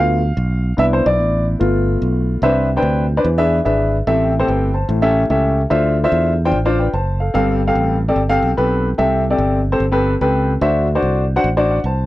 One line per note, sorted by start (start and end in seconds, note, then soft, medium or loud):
0.00 0.31 D2 medium
0.00 0.19 A3 soft
0.00 0.20 B3 soft
0.00 0.20 F4 medium
0.00 0.81 F5 medium
0.37 0.72 B1 medium
0.77 1.01 C2 loud
0.77 1.56 B3 medium
0.77 1.56 D4 medium
0.77 1.56 E4 medium
0.77 0.84 E5 loud
0.93 1.05 C5 medium
1.06 1.19 B1 medium
1.06 1.44 D5 medium
1.19 1.54 A1 loud
1.59 1.95 G1 loud
1.59 2.38 A3 medium
1.59 2.38 B3 medium
1.59 2.38 F4 medium
2.02 2.36 B1 medium
2.42 2.77 C2 medium
2.42 3.06 C3 medium
2.42 2.68 D4 medium
2.42 2.68 B4 medium
2.42 2.68 C5 medium
2.42 2.68 E5 medium
2.76 3.04 D4 medium
2.76 3.04 B4 medium
2.76 3.04 C5 medium
2.76 3.04 G5 medium
2.82 3.18 D2 medium
3.17 3.25 D4 medium
3.17 3.25 B4 medium
3.17 3.25 C5 medium
3.17 3.24 D5 medium
3.25 3.59 E2 loud
3.25 3.88 E3 medium
3.38 3.57 D4 medium
3.38 3.58 G#4 medium
3.38 3.58 B4 medium
3.38 3.58 E5 loud
3.65 4.01 G#1 medium
3.65 3.96 D4 medium
3.65 3.96 G#4 medium
3.65 3.96 B4 medium
3.65 3.96 E5 medium
4.07 4.42 A1 loud
4.07 4.70 A2 medium
4.07 4.32 C4 medium
4.07 4.32 G4 medium
4.07 4.32 A4 medium
4.07 4.32 E5 medium
4.40 4.68 C4 medium
4.40 4.68 G4 medium
4.40 4.68 A4 medium
4.40 4.47 C5 medium
4.48 4.83 G1 medium
4.48 4.73 B4 medium
4.48 4.73 G5 medium
4.74 5.13 C5 medium
4.74 5.13 A5 medium
4.88 5.23 A1 loud
4.88 5.52 A2 medium
5.02 5.22 C#4 loud
5.02 5.22 G4 medium
5.02 5.22 A4 medium
5.02 5.22 E5 loud
5.30 5.65 C#2 medium
5.30 5.60 C#4 medium
5.30 5.60 G4 medium
5.30 5.60 A4 medium
5.30 5.60 E5 medium
5.70 6.06 D2 medium
5.70 6.34 D3 medium
5.70 5.95 D4 medium
5.70 5.96 F4 medium
5.70 5.95 C5 medium
5.70 5.95 E5 loud
6.04 6.32 D4 medium
6.04 6.32 F4 medium
6.04 6.32 C5 medium
6.04 6.32 E5 loud
6.12 6.53 E2 medium
6.45 6.56 D4 medium
6.45 6.56 F4 medium
6.45 6.56 C5 medium
6.45 6.56 G5 loud
6.52 6.87 A1 medium
6.65 6.85 D4 medium
6.65 6.85 F4 medium
6.65 6.79 C5 medium
6.65 6.79 D5 loud
6.79 6.93 B4 soft
6.79 6.93 G5 medium
6.93 7.28 F#1 medium
6.93 7.19 C5 medium
6.93 7.19 A5 medium
7.20 7.33 A4 medium
7.20 7.33 F5 medium
7.34 7.69 G1 loud
7.34 7.97 G2 medium
7.34 7.59 C4 medium
7.34 7.59 G4 medium
7.34 7.59 A4 medium
7.34 7.59 F5 loud
7.67 7.95 C4 medium
7.67 7.95 G4 medium
7.67 7.95 A4 medium
7.67 7.95 F5 medium
7.75 8.10 A1 medium
8.09 8.20 C4 medium
8.09 8.20 G4 medium
8.09 8.20 A4 medium
8.09 8.20 D5 medium
8.16 8.38 G1 medium
8.29 8.49 C4 medium
8.29 8.49 G4 medium
8.29 8.49 A4 medium
8.29 8.49 F5 loud
8.43 8.55 B1 medium
8.57 8.92 B1 medium
8.57 8.87 C4 medium
8.57 8.87 G4 medium
8.57 8.88 A4 medium
8.57 8.88 B4 medium
8.98 9.33 C2 medium
8.98 9.62 C3 medium
8.98 9.23 C4 medium
8.98 9.23 G4 medium
8.98 9.23 A4 medium
8.98 9.23 E5 medium
9.30 9.59 C4 medium
9.30 9.59 G4 medium
9.30 9.59 A4 medium
9.30 9.59 D5 medium
9.38 9.73 G1 medium
9.72 9.83 C4 medium
9.72 9.83 G4 medium
9.72 9.83 A4 medium
9.72 9.83 C5 medium
9.80 10.15 G1 medium
9.92 10.12 C4 medium
9.92 10.12 G4 medium
9.92 10.12 A4 medium
9.92 10.12 B4 loud
10.21 10.56 C#2 medium
10.21 10.51 C4 medium
10.21 10.51 G4 medium
10.21 10.51 A4 medium
10.21 10.51 B4 medium
10.61 10.96 D2 loud
10.61 11.25 D3 medium
10.61 10.87 D4 medium
10.61 10.87 F#4 medium
10.61 10.87 C5 medium
10.61 10.87 E5 medium
10.95 11.23 D4 medium
10.95 11.23 F#4 medium
10.95 11.23 C5 medium
10.95 11.23 D5 medium
11.02 11.37 C2 medium
11.36 11.47 D4 medium
11.36 11.47 F#4 medium
11.36 11.47 C5 medium
11.36 11.47 F#5 loud
11.44 11.78 A1 medium
11.57 11.77 D4 medium
11.57 11.77 F#4 medium
11.57 11.76 C5 medium
11.57 11.77 D5 loud
11.71 11.84 F#5 medium
11.84 12.06 C2 medium
11.84 12.06 C5 medium
11.84 12.06 A5 medium